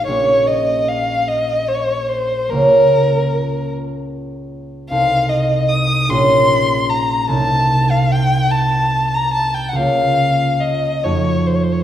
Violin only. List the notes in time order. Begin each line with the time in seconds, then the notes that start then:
0.07 C#5
0.47 D#5
0.88 F5
1.28 D#5
1.68 C#5
2.09 C5
2.50 A#4
4.90 F5
5.29 D#5
5.69 D#6
6.10 C6
6.89 A#5
7.31 A5
7.91 F5
8.11 G5
8.51 A5
9.14 A#5
9.34 A5
9.54 G5
9.69 F#5
9.76 F5
10.60 D#5
11.03 C#5
11.46 C5
11.55 C#5
11.63 C5
11.72 C#5
11.80 C5